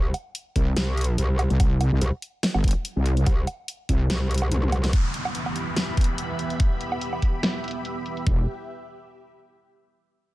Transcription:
Already playing: wobble bass C2
0.14 closed hi-hat, low woodblock
0.35 closed hi-hat
0.56 wobble bass C2, kick, closed hi-hat
0.77 wobble bass C2, snare, closed hi-hat
0.97 closed hi-hat
1.01 closed hi-hat
1.04 closed hi-hat
1.18 wobble bass C2, closed hi-hat
1.39 closed hi-hat, low woodblock
1.50 wobble bass C2, closed hi-hat
1.60 wobble bass C2, kick, closed hi-hat, low woodblock
1.81 closed hi-hat, low woodblock
1.92 wobble bass C2
2.01 wobble bass C2, closed hi-hat
2.22 closed hi-hat
2.43 snare, closed hi-hat
2.54 wobble bass G1, low woodblock
2.64 kick, closed hi-hat
2.68 closed hi-hat
2.71 closed hi-hat
2.85 closed hi-hat
2.96 wobble bass C2
3.06 closed hi-hat
3.17 closed hi-hat
3.26 wobble bass C2, kick, closed hi-hat, low woodblock
3.47 closed hi-hat, low woodblock
3.68 closed hi-hat
3.89 wobble bass C2, kick, closed hi-hat
4.10 wobble bass C2, snare, closed hi-hat
4.31 closed hi-hat
4.34 closed hi-hat
4.38 closed hi-hat
4.42 low woodblock
4.51 wobble bass C2, closed hi-hat, high tom
4.63 high tom
4.72 closed hi-hat, low woodblock
4.84 snare, closed hi-hat
4.93 analog synth pad E3 B3 G4 E5 B5, kick, closed hi-hat, downlifter
5.14 closed hi-hat
5.25 low woodblock
5.35 closed hi-hat
5.46 low woodblock
5.56 closed hi-hat
5.76 snare, closed hi-hat
5.97 kick, closed hi-hat
6.01 closed hi-hat
6.04 closed hi-hat
6.18 closed hi-hat
6.39 closed hi-hat
6.50 closed hi-hat
6.60 kick, closed hi-hat
6.81 closed hi-hat
6.92 low woodblock
7.01 closed hi-hat
7.13 low woodblock
7.22 kick, closed hi-hat
7.43 snare, closed hi-hat
7.64 closed hi-hat
7.68 closed hi-hat
7.71 closed hi-hat
7.85 closed hi-hat
8.06 closed hi-hat
8.17 closed hi-hat
8.27 wobble bass E1, kick

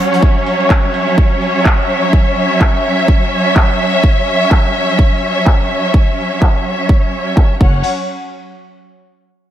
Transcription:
Already playing: string section F#3 C#4 C#5 F#5
0.13 snare, closed hi-hat
0.23 string section E5, kick, closed hi-hat
0.46 open hi-hat
0.60 closed hi-hat
0.70 kick, clap, closed hi-hat
0.94 open hi-hat
1.08 closed hi-hat
1.18 kick, closed hi-hat
1.42 open hi-hat
1.56 closed hi-hat
1.65 kick, clap
1.89 open hi-hat
2.03 closed hi-hat
2.13 kick
2.37 open hi-hat
2.51 closed hi-hat
2.61 kick, clap
2.85 open hi-hat
2.99 closed hi-hat
3.08 kick
3.22 open hi-hat
3.32 open hi-hat
3.46 closed hi-hat
3.56 kick, clap
3.80 open hi-hat
4.04 kick
4.27 open hi-hat
4.41 closed hi-hat
4.51 kick, clap
4.75 open hi-hat
4.99 kick
5.23 open hi-hat
5.46 kick, clap
5.94 kick
6.18 open hi-hat
6.32 closed hi-hat
6.42 kick, clap
6.65 open hi-hat
6.89 kick
7.03 open hi-hat
7.13 open hi-hat
7.37 kick, clap
7.61 fm bass F#1, string section F#3 C#4 C#5 F#5, kick, crash

